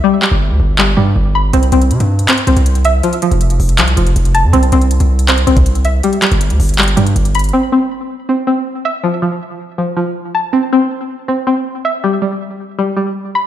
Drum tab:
HH |--------------------------------|x-x-x-x-x-x---x-x-x-x-x-x-x-x---|x-x-x-x-x-x-o-x-x-x-x-x-x-x-x---|x-x-x-x-x-x---x-x-x-x-x-x-x-x---|
CP |----x-----------x---------------|----------------x---------------|----------------x---------------|----------------x---------------|
BD |--------------------------------|--------------------------------|--------------------------------|----------------------o---------|

HH |x-x-x-x-x-x-o-xxxxx-x-x-x-x-xxxx|--------------------------------|--------------------------------|--------------------------------|
CP |----x-----------x---------------|--------------------------------|--------------------------------|--------------------------------|
BD |--------------------------------|--------------------------------|--------------------------------|--------------------------------|

HH |--------------------------------|
CP |--------------------------------|
BD |--------------------------------|